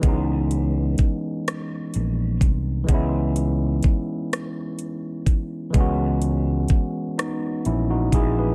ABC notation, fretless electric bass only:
X:1
M:6/8
L:1/8
Q:3/8=42
K:C#m
V:1 name="Fretless electric bass" clef=bass
C,,2 z2 ^A,,, ^B,,, | C,,2 z4 | C,,2 z2 ^A,,, A,,, |]